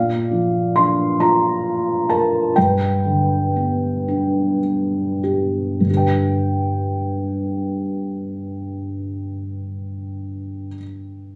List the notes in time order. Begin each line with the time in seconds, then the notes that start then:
Already playing: A#2 D5 F5
0.31 F3
0.76 D4 C6
1.20 F4 A#5
2.09 A#4 A5
2.56 G2 B4 G5
3.05 D3
3.56 B3
4.08 D4
5.23 G4
5.80 G2 D3
5.87 D4 G4
5.94 B4 G5